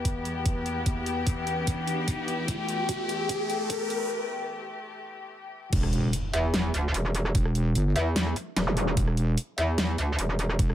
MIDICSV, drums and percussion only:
0, 0, Header, 1, 2, 480
1, 0, Start_track
1, 0, Key_signature, 1, "minor"
1, 0, Tempo, 405405
1, 1021, Time_signature, 4, 2, 24, 8
1, 12723, End_track
2, 0, Start_track
2, 0, Title_t, "Drums"
2, 60, Note_on_c, 9, 36, 96
2, 60, Note_on_c, 9, 42, 81
2, 178, Note_off_c, 9, 36, 0
2, 178, Note_off_c, 9, 42, 0
2, 300, Note_on_c, 9, 42, 53
2, 418, Note_off_c, 9, 42, 0
2, 539, Note_on_c, 9, 42, 81
2, 540, Note_on_c, 9, 36, 95
2, 658, Note_off_c, 9, 36, 0
2, 658, Note_off_c, 9, 42, 0
2, 779, Note_on_c, 9, 42, 53
2, 897, Note_off_c, 9, 42, 0
2, 1019, Note_on_c, 9, 42, 82
2, 1020, Note_on_c, 9, 36, 96
2, 1137, Note_off_c, 9, 42, 0
2, 1138, Note_off_c, 9, 36, 0
2, 1259, Note_on_c, 9, 42, 57
2, 1377, Note_off_c, 9, 42, 0
2, 1499, Note_on_c, 9, 42, 80
2, 1500, Note_on_c, 9, 36, 100
2, 1617, Note_off_c, 9, 42, 0
2, 1618, Note_off_c, 9, 36, 0
2, 1739, Note_on_c, 9, 42, 55
2, 1858, Note_off_c, 9, 42, 0
2, 1979, Note_on_c, 9, 36, 96
2, 1979, Note_on_c, 9, 42, 84
2, 2098, Note_off_c, 9, 36, 0
2, 2098, Note_off_c, 9, 42, 0
2, 2219, Note_on_c, 9, 42, 55
2, 2338, Note_off_c, 9, 42, 0
2, 2459, Note_on_c, 9, 36, 95
2, 2459, Note_on_c, 9, 42, 80
2, 2577, Note_off_c, 9, 42, 0
2, 2578, Note_off_c, 9, 36, 0
2, 2699, Note_on_c, 9, 42, 51
2, 2818, Note_off_c, 9, 42, 0
2, 2939, Note_on_c, 9, 36, 105
2, 2939, Note_on_c, 9, 42, 82
2, 3057, Note_off_c, 9, 36, 0
2, 3057, Note_off_c, 9, 42, 0
2, 3179, Note_on_c, 9, 42, 54
2, 3298, Note_off_c, 9, 42, 0
2, 3419, Note_on_c, 9, 36, 112
2, 3419, Note_on_c, 9, 42, 81
2, 3537, Note_off_c, 9, 36, 0
2, 3538, Note_off_c, 9, 42, 0
2, 3660, Note_on_c, 9, 42, 55
2, 3778, Note_off_c, 9, 42, 0
2, 3899, Note_on_c, 9, 36, 110
2, 3899, Note_on_c, 9, 42, 83
2, 4017, Note_off_c, 9, 36, 0
2, 4018, Note_off_c, 9, 42, 0
2, 4139, Note_on_c, 9, 42, 52
2, 4257, Note_off_c, 9, 42, 0
2, 4379, Note_on_c, 9, 36, 107
2, 4379, Note_on_c, 9, 42, 81
2, 4497, Note_off_c, 9, 36, 0
2, 4497, Note_off_c, 9, 42, 0
2, 4619, Note_on_c, 9, 42, 52
2, 4737, Note_off_c, 9, 42, 0
2, 6780, Note_on_c, 9, 36, 118
2, 6780, Note_on_c, 9, 42, 86
2, 6780, Note_on_c, 9, 49, 108
2, 6898, Note_off_c, 9, 36, 0
2, 6898, Note_off_c, 9, 42, 0
2, 6898, Note_off_c, 9, 49, 0
2, 6905, Note_on_c, 9, 37, 55
2, 7020, Note_on_c, 9, 42, 55
2, 7023, Note_off_c, 9, 37, 0
2, 7138, Note_off_c, 9, 42, 0
2, 7260, Note_on_c, 9, 42, 81
2, 7379, Note_off_c, 9, 42, 0
2, 7501, Note_on_c, 9, 42, 56
2, 7619, Note_off_c, 9, 42, 0
2, 7740, Note_on_c, 9, 38, 127
2, 7740, Note_on_c, 9, 42, 84
2, 7858, Note_off_c, 9, 38, 0
2, 7858, Note_off_c, 9, 42, 0
2, 7981, Note_on_c, 9, 42, 55
2, 8099, Note_off_c, 9, 42, 0
2, 8221, Note_on_c, 9, 42, 85
2, 8339, Note_off_c, 9, 42, 0
2, 8461, Note_on_c, 9, 42, 56
2, 8579, Note_off_c, 9, 42, 0
2, 8586, Note_on_c, 9, 37, 63
2, 8700, Note_on_c, 9, 36, 124
2, 8701, Note_on_c, 9, 42, 85
2, 8704, Note_off_c, 9, 37, 0
2, 8818, Note_off_c, 9, 36, 0
2, 8819, Note_off_c, 9, 42, 0
2, 8826, Note_on_c, 9, 37, 53
2, 8941, Note_on_c, 9, 42, 57
2, 8944, Note_off_c, 9, 37, 0
2, 9059, Note_off_c, 9, 42, 0
2, 9181, Note_on_c, 9, 42, 85
2, 9299, Note_off_c, 9, 42, 0
2, 9421, Note_on_c, 9, 42, 59
2, 9539, Note_off_c, 9, 42, 0
2, 9661, Note_on_c, 9, 38, 127
2, 9661, Note_on_c, 9, 42, 87
2, 9779, Note_off_c, 9, 38, 0
2, 9779, Note_off_c, 9, 42, 0
2, 9786, Note_on_c, 9, 37, 56
2, 9900, Note_on_c, 9, 42, 56
2, 9904, Note_off_c, 9, 37, 0
2, 10019, Note_off_c, 9, 42, 0
2, 10141, Note_on_c, 9, 38, 65
2, 10141, Note_on_c, 9, 42, 80
2, 10259, Note_off_c, 9, 38, 0
2, 10259, Note_off_c, 9, 42, 0
2, 10381, Note_on_c, 9, 42, 56
2, 10499, Note_off_c, 9, 42, 0
2, 10620, Note_on_c, 9, 36, 123
2, 10621, Note_on_c, 9, 42, 86
2, 10739, Note_off_c, 9, 36, 0
2, 10739, Note_off_c, 9, 42, 0
2, 10746, Note_on_c, 9, 37, 51
2, 10861, Note_on_c, 9, 42, 54
2, 10864, Note_off_c, 9, 37, 0
2, 10979, Note_off_c, 9, 42, 0
2, 11100, Note_on_c, 9, 42, 81
2, 11219, Note_off_c, 9, 42, 0
2, 11340, Note_on_c, 9, 42, 54
2, 11458, Note_off_c, 9, 42, 0
2, 11580, Note_on_c, 9, 38, 127
2, 11580, Note_on_c, 9, 42, 86
2, 11698, Note_off_c, 9, 38, 0
2, 11698, Note_off_c, 9, 42, 0
2, 11820, Note_on_c, 9, 42, 55
2, 11938, Note_off_c, 9, 42, 0
2, 12060, Note_on_c, 9, 42, 84
2, 12179, Note_off_c, 9, 42, 0
2, 12301, Note_on_c, 9, 42, 55
2, 12419, Note_off_c, 9, 42, 0
2, 12426, Note_on_c, 9, 37, 61
2, 12540, Note_on_c, 9, 36, 121
2, 12540, Note_on_c, 9, 42, 79
2, 12544, Note_off_c, 9, 37, 0
2, 12659, Note_off_c, 9, 36, 0
2, 12659, Note_off_c, 9, 42, 0
2, 12666, Note_on_c, 9, 37, 50
2, 12723, Note_off_c, 9, 37, 0
2, 12723, End_track
0, 0, End_of_file